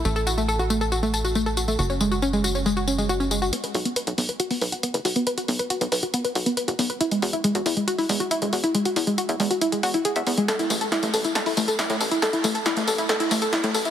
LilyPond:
<<
  \new Staff \with { instrumentName = "Synth pluck" } { \time 4/4 \key e \mixolydian \tempo 4 = 138 a16 a'16 fis'16 a16 a'16 fis'16 a16 a'16 fis'16 a16 a'16 fis'16 a16 a'16 fis'16 a16 | fis'16 cis'16 gis16 fis'16 cis'16 gis16 fis'16 cis'16 gis16 fis'16 cis'16 gis16 fis'16 cis'16 gis16 fis'16 | b16 b'16 fis'16 b16 b'16 fis'16 b16 b'16 fis'16 b16 b'16 fis'16 b16 b'16 fis'16 b16 | b'16 fis'16 b16 b'16 fis'16 b16 b'16 fis'16 b16 b'16 fis'16 b16 b'16 fis'16 b16 b'16 |
e'16 gis16 fis'16 e'16 gis16 fis'16 e'16 gis16 fis'16 e'16 gis16 fis'16 e'16 gis16 fis'16 e'16 | gis16 fis'16 e'16 gis16 fis'16 e'16 gis16 fis'16 e'16 gis16 fis'16 e'16 gis'16 e''16 b16 gis16 | a'16 e'16 a16 a'16 e'16 a16 a'16 e'16 a'16 e'16 a16 a'16 e'16 a16 a'16 e'16 | a'16 e'16 a16 a'16 e'16 a16 a'16 e'16 a'16 e'16 a16 a'16 e'16 a16 a'16 e'16 | }
  \new Staff \with { instrumentName = "Analog synth bass" } { \clef bass \time 4/4 \key e \mixolydian a,,1 | fis,,1 | r8 b,,16 r8 b,,16 b,,16 r8. b,,16 r8 fis,,16 b,,16 r16 | r8 b,,16 r8 b,,16 b,,16 r8. b,,16 r8 fis,,16 b,,16 r16 |
r8 e,16 r8 e,16 e,16 r8. e,16 r8 e,,16 e,16 r16 | r8 e,16 r8 e,16 e,16 r8. e,16 r8 e,16 e,16 r16 | r8 a,,16 r8 a,,16 a,,16 r8. a,,16 r8 a,16 a,,16 r16 | r8 a,,16 r8 a,,16 a,,16 r8. a,,16 r8 a,16 a,,16 r16 | }
  \new DrumStaff \with { instrumentName = "Drums" } \drummode { \time 4/4 tamb16 tamb16 tamb16 tamb16 tamb16 tamb16 tamb16 tamb16 tamb16 tamb16 tamb16 tamb16 tamb16 tamb16 tamb16 tamb16 | tamb16 tamb16 tamb16 tamb16 tamb16 tamb16 tamb16 tamb16 tamb16 tamb16 tamb16 tamb16 tamb16 tamb16 tamb16 tamb16 | hh16 hh16 hho16 hh16 hh16 hh16 hho16 hh16 hh16 hho16 hho16 hh16 hh16 hh16 hho16 hh16 | hh16 hh16 hho16 hh16 hh16 hh16 hho16 hh16 hh16 hh16 hho16 hh16 hh16 hh16 hho16 hh16 |
hh16 hh16 hho16 hh16 hh16 hh16 hho16 hh16 hh16 hho16 hho16 hh16 hh16 hh16 hho16 hh16 | hh16 hh16 hho16 hh16 hh16 hh16 hho16 hh16 hh16 hh16 hho16 hh16 hh16 hh16 hho16 hh16 | <hh sn tamb>16 <hh tamb>16 <hho tamb>16 <hh tamb>16 <hh sn tamb>16 <hh tamb>16 <hho tamb>16 <hh tamb>16 <hh sn tamb>16 <hho tamb>16 <hho tamb>16 <hh tamb>16 <hh sn tamb>16 <hh tamb>16 <hho tamb>16 <hh tamb>16 | <hh sn tamb>16 <hh tamb>16 <hho tamb>16 <hh tamb>16 <hh sn tamb>16 <hh tamb>16 <hho tamb>16 <hh tamb>16 <hh sn tamb>16 <hh tamb>16 <hho tamb>16 <hh tamb>16 <hh sn tamb>16 <hh tamb>16 <hho tamb>16 <hh tamb>16 | }
>>